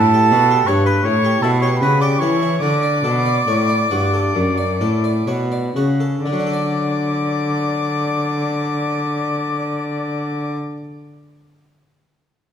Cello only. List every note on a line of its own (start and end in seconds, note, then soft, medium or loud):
0.00 0.33 A2 medium
0.32 0.68 B2 medium
0.68 1.04 G2 medium
1.05 1.42 A2 medium
1.43 1.83 B2 medium
1.82 2.21 C#3 medium
2.22 2.61 E3 medium
2.63 3.04 D3 medium
3.05 3.47 B2 medium
3.49 3.91 A2 medium
3.93 4.36 G2 soft
4.37 4.84 F#2 medium
4.82 5.28 A2 soft
5.29 5.76 B2 medium
5.77 6.24 C#3 soft
6.25 10.56 D3 medium